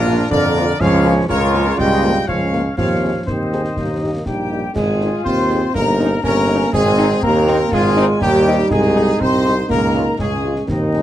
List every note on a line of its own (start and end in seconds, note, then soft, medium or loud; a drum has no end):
0.00 0.23 A#1 loud
0.00 0.27 A#2 loud
0.00 0.75 D4 loud
0.00 0.28 F4 loud
0.00 0.28 A#4 loud
0.07 0.16 F3 medium
0.07 0.15 A#3 medium
0.07 0.15 F4 medium
0.30 0.72 F2 loud
0.30 0.77 D3 loud
0.30 0.77 A#4 loud
0.30 0.77 D5 loud
0.30 concert bass drum medium
0.56 0.65 F3 medium
0.56 0.65 A#3 medium
0.56 0.65 F4 loud
0.56 snare medium
0.80 1.22 C#2 loud
0.80 1.26 F3 loud
0.80 1.26 C#4 loud
0.80 1.26 C#5 loud
0.80 1.14 F5 loud
0.80 concert bass drum loud
0.80 snare medium
0.80 crash soft
1.04 1.13 F3 loud
1.04 1.13 A#3 loud
1.04 1.13 F4 loud
1.29 1.71 C#2 loud
1.29 1.80 C#3 loud
1.29 2.24 F4 loud
1.29 1.75 A#4 loud
1.29 1.75 C#5 loud
1.29 concert bass drum medium
1.29 snare medium
1.54 1.63 F3 medium
1.54 1.63 A#3 medium
1.54 1.63 F4 medium
1.54 snare medium
1.67 snare medium
1.78 2.20 C#2 loud
1.78 2.28 G3 loud
1.78 2.25 D#5 loud
1.78 2.28 G5 loud
1.78 concert bass drum medium
1.78 snare medium
2.04 2.13 F3 medium
2.04 2.13 A#3 medium
2.04 2.13 F4 medium
2.27 2.70 C#2 loud
2.27 2.64 F3 medium
2.27 2.74 C#4 loud
2.27 2.74 C#5 loud
2.27 2.75 F5 loud
2.27 concert bass drum medium
2.53 2.62 F3 medium
2.53 2.62 A#3 medium
2.53 2.62 F4 medium
2.53 snare medium
2.77 3.19 D#2 medium
2.77 3.29 F3 loud
2.77 3.19 C4 medium
2.77 3.23 C#5 loud
2.77 3.23 F5 loud
2.77 concert bass drum medium
2.77 snare medium
2.77 crash soft
3.03 3.12 C4 medium
3.03 3.12 D#4 medium
3.03 3.12 G#4 medium
3.26 3.69 D#2 medium
3.26 4.26 D#3 medium
3.26 3.73 C4 loud
3.26 4.03 C5 medium
3.26 4.27 D#5 medium
3.26 concert bass drum medium
3.26 snare medium
3.52 3.62 C4 medium
3.52 3.62 D#4 medium
3.52 3.62 G#4 medium
3.52 snare medium
3.64 snare medium
3.76 4.18 D#2 medium
3.76 4.24 A#3 medium
3.76 concert bass drum medium
3.76 snare medium
4.03 4.11 A#3 medium
4.03 4.11 D#4 medium
4.03 4.12 G4 medium
4.26 4.67 A#1 medium
4.26 4.72 G3 medium
4.26 4.62 D#4 medium
4.26 4.73 G4 medium
4.26 4.72 G5 medium
4.26 concert bass drum medium
4.26 snare medium
4.52 4.61 A#3 medium
4.52 4.61 D#4 medium
4.52 4.61 G4 medium
4.74 5.12 G#1 loud
4.74 5.21 G#3 loud
4.74 5.71 F4 loud
4.74 5.25 G#4 loud
4.74 5.22 G#5 loud
4.74 concert bass drum medium
4.74 snare medium
4.74 crash medium
5.01 5.10 C4 medium
5.01 5.11 D#4 medium
5.01 5.11 G#4 medium
5.01 snare medium
5.25 5.66 D#2 loud
5.25 5.76 C4 loud
5.25 5.71 C5 loud
5.25 5.71 C6 loud
5.25 concert bass drum medium
5.50 5.59 C4 medium
5.50 5.59 D#4 medium
5.50 5.60 G#4 medium
5.50 snare medium
5.73 6.16 G1 loud
5.73 6.23 A#3 loud
5.73 6.23 D#4 loud
5.73 6.21 A#4 loud
5.73 6.21 A#5 loud
5.73 concert bass drum medium
5.73 snare medium
5.99 6.09 C#4 medium
5.99 6.08 D#4 medium
5.99 snare medium
6.23 6.65 G1 loud
6.23 6.75 A#3 loud
6.23 6.69 C#4 loud
6.23 6.70 A#4 loud
6.23 6.70 A#5 loud
6.23 concert bass drum medium
6.23 snare medium
6.49 6.58 C#4 medium
6.49 6.58 D#4 medium
6.61 snare medium
6.73 7.15 G#1 loud
6.73 7.23 G#3 loud
6.73 7.68 C4 loud
6.73 7.19 G#4 loud
6.73 7.20 G#5 loud
6.73 concert bass drum loud
6.73 snare medium
6.73 crash soft
6.98 7.07 C4 loud
6.98 7.07 D#4 loud
6.98 snare medium
7.22 7.64 D#2 loud
7.22 7.69 A#3 loud
7.22 7.72 A#4 loud
7.22 7.69 A#5 loud
7.22 concert bass drum medium
7.47 7.56 C4 loud
7.47 7.56 D#4 loud
7.47 snare medium
7.72 8.13 G#1 loud
7.72 8.23 G#3 loud
7.72 8.18 F4 loud
7.72 8.07 G#4 loud
7.72 8.18 G#5 loud
7.72 concert bass drum loud
7.72 snare loud
7.97 8.06 C4 loud
7.97 8.06 D#4 loud
7.97 snare medium
8.20 8.63 D#2 loud
8.20 8.73 G3 loud
8.20 10.19 D#4 loud
8.20 8.67 G4 loud
8.20 8.71 G5 loud
8.20 concert bass drum medium
8.20 snare medium
8.47 8.56 C4 loud
8.47 8.56 D#4 loud
8.59 snare medium
8.70 9.12 C2 loud
8.70 9.22 G#3 loud
8.70 9.20 G#4 loud
8.70 9.17 G#5 loud
8.70 concert bass drum loud
8.70 snare medium
8.70 crash soft
8.95 9.05 G#3 loud
8.95 9.04 D#4 loud
8.95 snare medium
9.20 9.61 C2 loud
9.20 9.54 C4 loud
9.20 9.70 C5 loud
9.20 9.66 C6 loud
9.20 concert bass drum medium
9.45 9.54 G#3 medium
9.45 9.54 D#4 medium
9.45 snare medium
9.69 10.11 C#2 loud
9.69 10.15 A#3 loud
9.69 10.15 A#4 loud
9.69 10.19 A#5 loud
9.69 concert bass drum loud
9.69 snare medium
9.94 10.03 G#3 medium
9.94 10.03 C#4 medium
9.94 10.04 F4 medium
9.94 snare medium
10.19 10.60 C#2 medium
10.19 10.65 G#3 medium
10.19 10.65 C#4 medium
10.19 10.66 G#4 loud
10.19 10.66 G#5 loud
10.19 concert bass drum medium
10.19 snare medium
10.44 10.53 G#3 medium
10.44 10.53 C#4 medium
10.44 10.53 F4 medium
10.56 snare medium
10.67 11.02 D#2 loud
10.67 11.02 D#3 loud
10.67 11.02 C4 medium
10.67 11.02 D#4 loud
10.67 11.02 D#5 loud
10.67 concert bass drum medium
10.67 snare medium
10.67 crash soft
10.93 11.02 G#3 medium
10.93 11.02 C4 medium
10.93 11.02 D#4 medium
10.93 snare medium